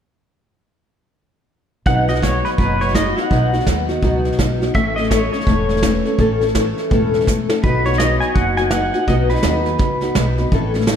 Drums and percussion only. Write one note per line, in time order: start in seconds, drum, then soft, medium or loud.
1.86 kick medium
1.86 snare soft
2.08 snare soft
2.16 snare soft
2.23 kick medium
2.23 snare medium
2.23 hi-hat pedal medium
2.45 snare soft
2.58 kick medium
2.58 snare soft
2.81 snare soft
2.89 snare soft
2.95 kick medium
2.95 snare medium
2.95 hi-hat pedal medium
3.17 snare soft
3.31 kick medium
3.31 snare soft
3.53 snare soft
3.60 snare soft
3.67 kick medium
3.67 snare medium
3.67 hi-hat pedal medium
3.89 snare soft
4.03 kick medium
4.03 snare soft
4.25 snare soft
4.32 snare soft
4.39 kick medium
4.39 snare medium
4.39 hi-hat pedal medium
4.62 snare soft
4.75 kick medium
4.75 snare soft
4.97 snare soft
5.04 snare soft
5.11 kick medium
5.11 snare medium
5.11 hi-hat pedal medium
5.33 snare soft
5.41 snare soft
5.47 kick medium
5.47 snare soft
5.69 snare soft
5.77 snare soft
5.83 kick medium
5.83 snare loud
5.83 hi-hat pedal medium
6.05 snare soft
6.18 kick medium
6.18 snare soft
6.41 snare soft
6.48 snare soft
6.55 kick medium
6.55 snare medium
6.55 hi-hat pedal medium
6.78 snare soft
6.91 kick medium
6.91 snare soft
7.14 snare soft
7.21 snare soft
7.27 kick medium
7.27 snare soft
7.27 hi-hat pedal medium
7.50 snare medium
7.64 kick loud
7.64 snare soft
7.85 snare soft
7.93 snare soft
8.00 snare medium
8.00 hi-hat pedal medium
8.21 snare soft
8.35 kick loud
8.35 snare soft
8.57 snare soft
8.71 snare loud
8.71 hi-hat pedal medium
8.94 snare soft
9.08 kick medium
9.08 snare soft
9.29 snare soft
9.36 snare soft
9.43 snare medium
9.43 hi-hat pedal medium
9.66 snare soft
9.78 kick loud
9.78 snare soft
10.01 snare soft
10.15 snare medium
10.15 hi-hat pedal medium
10.38 snare soft
10.52 kick medium
10.52 snare soft
10.74 snare soft
10.81 snare soft
10.87 snare medium
10.87 hi-hat pedal medium